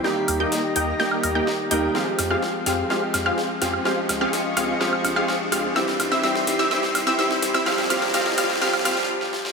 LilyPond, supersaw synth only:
\new Staff \with { instrumentName = "Supersaw synth" } { \time 4/4 \key ees \mixolydian \tempo 4 = 126 <bes ees' g' ees'' g''>16 r8 <bes ees' g' ees'' g''>8 r16 <bes ees' g' ees'' g''>8 <bes ees' g' ees'' g''>8. <bes ees' g' ees'' g''>16 r8 <bes ees' g' ees'' g''>8 | <c' f' g' aes' f''>16 r8 <c' f' g' aes' f''>8 r16 <c' f' g' aes' f''>8 <c' f' g' aes' f''>16 r8 <c' f' g' aes' f''>8 r16 <c' f' g' aes' f''>8 | <c' f' g' aes' f''>16 r8 <c' f' g' aes' f''>8 r16 <c' f' g' aes' f''>8 <c' f' g' aes' f''>16 r8 <c' f' g' aes' f''>8 r16 <c' f' g' aes' f''>8 | <c' e' g' e''>16 r8 <c' e' g' e''>16 <c' e' g' e''>16 r8 <c' e' g' e''>16 <c' e' g' e''>16 r8 <c' e' g' e''>16 <c' e' g' e''>16 r8 <c' e' g' e''>16 |
<c' f' g' f''>16 r16 <c' f' g' f''>16 r16 <c' f' g' f''>16 r16 <c' f' g' f''>16 r16 <c' f' g' f''>16 r16 <c' f' g' f''>16 r4 r16 | }